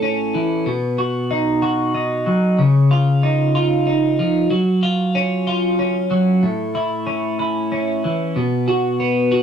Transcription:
clean electric guitar
Already playing: A2 A4
0.02 C#4
0.34 E3
0.66 B2
0.98 F#4
1.31 D#4
1.62 F#4
1.94 D#4
2.26 F#3
2.59 C#3
2.91 F4
3.23 D#4
3.55 F4
3.87 D#4
4.19 F3
4.50 F#3
4.83 F4
5.15 C#4
5.47 F4
5.79 C#4
6.11 F#3
6.43 A2
6.75 E4
7.07 C#4
7.39 E4
7.72 C#4
8.04 E3
8.36 B2
8.68 F#4
9.00 B3
9.32 F#4

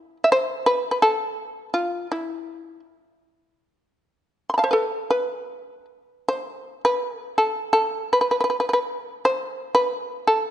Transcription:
shamisen
Already playing: E4
0.24 E5
0.32 C5
0.66 B4
0.91 B4
1.02 A4
1.74 F4
2.12 E4
4.50 C6
4.54 A5 B5
4.59 F5
4.64 C5 E5
4.71 A4 B4
5.10 B4
6.28 C5
6.85 B4
7.17 A4
7.38 A4
7.73 A4
8.13 B4
8.21 B4
8.31 B4
8.40 B4
8.50 B4
8.60 B4
8.69 B4
8.73 B4
9.25 C5
9.75 B4
10.27 A4

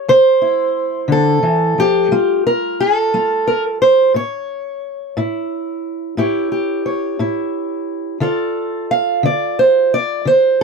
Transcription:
steel-string acoustic guitar
0.08 D3 C5
0.42 E4
1.08 D3
1.12 A4
1.43 E3
1.78 F3 G4
2.12 G3 F4
2.47 A#4
2.80 A4
3.14 G3 F4
3.47 A#4
3.82 C5
4.14 A2 C#5
5.17 A2 E4
6.17 A2 E4 G4 C#5
6.52 G4
6.86 C#5
7.19 A2 E4
8.20 D3 F4 A4 D5
8.91 F5
9.23 D3 D5
9.59 C5
9.94 D5
10.25 D3 C5

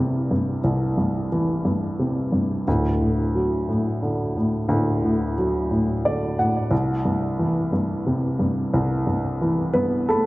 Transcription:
upright piano
Already playing: C2 G2 C3 E3
0.31 G2
0.64 C2
0.98 G2
1.32 E3
1.65 G2
1.99 C3
2.32 G2
2.68 D1 D2
3.01 A2
3.35 F#3
3.69 A2
4.02 D3
4.36 A2
4.68 D1 D2
5.04 A2
5.38 F#3
5.71 A2
6.05 D3 D5
6.39 A2 F#5
6.71 C2
7.05 G2
7.39 E3
7.73 G2
8.06 C3
8.39 G2
8.74 C2
9.07 G2
9.41 E3
9.74 G2 B3 B4
10.09 A3 A4 B5

